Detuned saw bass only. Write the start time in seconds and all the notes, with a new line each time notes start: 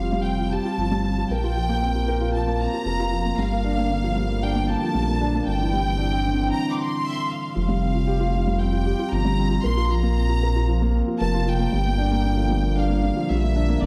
Already playing: F1
0.78 G1
1.30 A#1
2.85 F1
3.37 G1
4.94 A#1
5.47 G1
7.56 F1
9.12 G1
9.65 A#1
11.21 F1
11.73 G1
13.30 A#1
13.82 G1